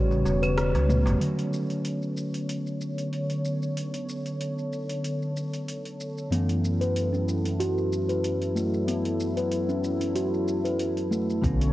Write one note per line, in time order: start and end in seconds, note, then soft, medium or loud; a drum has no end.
0.00 0.25 A1 medium
0.00 1.24 C#3 medium
0.00 1.17 G3 medium
0.00 1.24 G3 medium
0.00 1.18 B3 medium
0.00 1.24 B3 medium
0.00 0.41 F#4 loud
0.00 1.18 C#5 medium
0.11 darbuka tek medium
0.11 shaker soft
0.25 0.76 E1 medium
0.25 darbuka tek medium
0.25 shaker medium
0.42 0.57 B4 medium
0.42 cross-stick soft
0.42 open hi-hat soft
0.42 darbuka ka soft
0.42 claves medium
0.42 shaker soft
0.58 cross-stick loud
0.58 open hi-hat medium
0.58 shaker soft
0.75 1.08 C#2 loud
0.75 open hi-hat soft
0.75 high tom soft
0.75 darbuka tek medium
0.75 shaker soft
0.89 0.99 A3 loud
0.89 mid tom medium
0.89 shaker medium
1.06 1.17 A1 medium
1.06 mid tom medium
1.06 open hi-hat soft
1.06 darbuka ka medium
1.06 darbuka tek medium
1.06 shaker soft
1.19 6.27 D3 medium
1.19 6.28 D3 medium
1.19 6.28 F#3 medium
1.19 6.29 A3 medium
1.19 6.28 B3 medium
1.19 11.39 A4 medium
1.19 6.28 C#5 medium
1.19 open hi-hat medium
1.19 shaker soft
1.23 6.30 C#4 medium
1.39 open hi-hat soft
1.39 shaker soft
1.54 shaker medium
1.70 open hi-hat soft
1.70 shaker soft
1.85 open hi-hat medium
1.85 shaker soft
2.02 shaker soft
2.17 shaker medium
2.34 open hi-hat soft
2.34 shaker soft
2.49 open hi-hat medium
2.49 shaker soft
2.67 shaker soft
2.81 shaker medium
2.98 open hi-hat soft
2.98 shaker soft
3.13 open hi-hat medium
3.13 shaker soft
3.30 open hi-hat soft
3.30 shaker soft
3.45 shaker medium
3.62 shaker soft
3.77 open hi-hat medium
3.77 shaker soft
3.94 open hi-hat soft
3.94 shaker soft
4.09 shaker medium
4.26 open hi-hat soft
4.26 shaker soft
4.40 open hi-hat medium
4.40 shaker soft
4.58 shaker soft
4.73 shaker medium
4.89 open hi-hat soft
4.89 shaker soft
5.04 open hi-hat medium
5.04 shaker soft
5.22 shaker soft
5.37 shaker medium
5.53 open hi-hat soft
5.53 shaker soft
5.68 open hi-hat medium
5.68 shaker soft
5.86 open hi-hat soft
5.86 shaker soft
6.01 shaker medium
6.18 shaker soft
6.31 11.39 F#2 medium
6.31 11.39 E3 medium
6.31 11.39 F#3 medium
6.31 11.40 A3 medium
6.31 6.79 B3 medium
6.31 11.40 C#4 medium
6.31 11.39 E4 medium
6.31 open hi-hat medium
6.31 shaker soft
6.49 open hi-hat soft
6.49 shaker soft
6.65 shaker medium
6.81 6.95 B4 medium
6.81 open hi-hat soft
6.81 shaker soft
6.96 open hi-hat medium
6.96 shaker soft
7.13 7.43 C#4 medium
7.13 shaker soft
7.29 shaker medium
7.45 7.59 C#4 medium
7.45 open hi-hat soft
7.45 shaker soft
7.60 8.07 F#4 medium
7.60 open hi-hat medium
7.60 shaker soft
7.78 shaker soft
7.93 shaker medium
8.09 8.23 B4 medium
8.09 open hi-hat soft
8.09 shaker soft
8.24 open hi-hat medium
8.24 shaker soft
8.42 open hi-hat soft
8.42 shaker soft
8.56 8.65 A3 medium
8.56 shaker medium
8.74 shaker soft
8.88 9.35 B3 medium
8.88 open hi-hat medium
8.88 shaker soft
9.05 open hi-hat soft
9.05 shaker soft
9.20 shaker medium
9.37 9.51 B4 medium
9.37 open hi-hat soft
9.37 shaker soft
9.52 open hi-hat medium
9.52 shaker soft
9.69 9.99 C#4 medium
9.69 shaker soft
9.84 shaker medium
10.01 10.15 C#4 medium
10.01 open hi-hat soft
10.01 shaker soft
10.15 10.63 F#4 medium
10.15 open hi-hat medium
10.15 shaker soft
10.34 shaker soft
10.48 shaker medium
10.65 10.78 B4 medium
10.65 open hi-hat soft
10.65 shaker soft
10.79 open hi-hat medium
10.79 shaker soft
10.97 open hi-hat soft
10.97 shaker soft
11.11 11.21 A3 medium
11.11 shaker medium
11.30 shaker soft
11.41 11.73 B1 loud
11.41 11.73 D3 medium
11.41 11.73 A3 medium
11.41 11.73 B3 loud
11.41 11.73 C#4 medium
11.41 11.73 A4 medium
11.41 11.73 C#5 medium
11.41 kick loud
11.41 open hi-hat medium
11.41 shaker soft
11.61 open hi-hat soft
11.61 shaker soft